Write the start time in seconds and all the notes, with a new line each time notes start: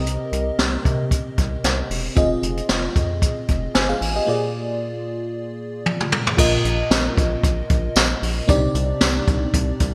Already playing: C2 C3 C4 G4 A#4 D#5
0.07 closed hi-hat
0.32 C2, closed hi-hat
0.59 C2, snare, closed hi-hat
0.85 C3, kick, closed hi-hat
1.11 kick, closed hi-hat
1.38 C2, kick, closed hi-hat
1.64 C2, snare, closed hi-hat
1.90 E1, open hi-hat
2.16 F1 C4 F4 G#4 D#5, kick, closed hi-hat
2.43 F1, closed hi-hat
2.57 closed hi-hat
2.69 F1, snare, closed hi-hat
2.96 F2, kick, closed hi-hat
3.22 kick, closed hi-hat
3.48 F1, kick, closed hi-hat
3.75 G1 C5 G#5, snare, closed hi-hat
3.89 G#4 F5
4.01 A1, open hi-hat
4.16 G4 D#5
4.27 A#2 A#3 F4 G#4 D5
5.86 high tom
6.00 mid tom
6.12 mid tom
6.27 floor tom
6.37 A#1 A#2 F4 A#4 D#5, kick, crash
6.64 A#1, closed hi-hat
6.90 A#1, snare, closed hi-hat, tambourine
7.17 A#1, kick, closed hi-hat
7.43 A#1, kick, closed hi-hat
7.70 A#1, kick, closed hi-hat
7.96 A#1, snare, closed hi-hat, tambourine
8.22 A#1, open hi-hat
8.48 C2 C3 C4 D4 D#4 G4 D5, kick, closed hi-hat
8.75 C2, closed hi-hat
9.01 C2, snare, closed hi-hat, tambourine
9.27 C2, kick, closed hi-hat
9.54 C2, kick, closed hi-hat
9.80 C2, kick, closed hi-hat